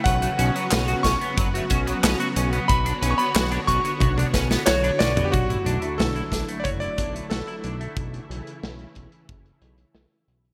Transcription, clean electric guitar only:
X:1
M:4/4
L:1/16
Q:1/4=91
K:D
V:1 name="Clean electric guitar"
B F C B, B F C B, B F C B, B F C B, | F D C B, F D C B, F D C B, F D C B, | F E D A, F E D A, F E D A, F E D A, | z16 |]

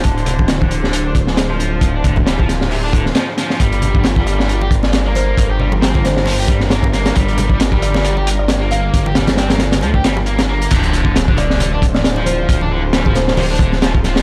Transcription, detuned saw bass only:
X:1
M:4/4
L:1/8
Q:"Swing 16ths" 1/4=135
K:Dm
V:1 name="Detuned saw bass" clef=bass
D,,,8 | D,,,4- D,,, D,,, z2 | G,,,8 | G,,,8 |
G,,,8 | G,,,4 D,, G,,,3 | D,,,8 | D,,,8 |]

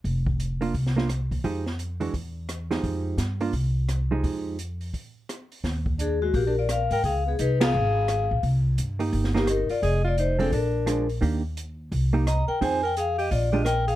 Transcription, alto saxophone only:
X:1
M:4/4
L:1/8
Q:"Swing" 1/4=172
K:Eb
V:1 name="Alto saxophone"
z8 | z8 | z8 | z8 |
z2 D A, (3B, D F B B | A _C E A4- A | z4 z B, E F | A F E C D3 z |
z6 e B | c B A G F G B A |]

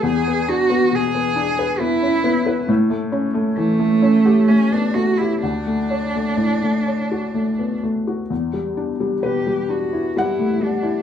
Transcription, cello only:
X:1
M:3/4
L:1/16
Q:1/4=65
K:Edor
V:1 name="Cello"
^G2 F2 G4 E4 | z4 A,4 C D F E | D8- D2 z2 | z4 G2 F2 E2 D2 |]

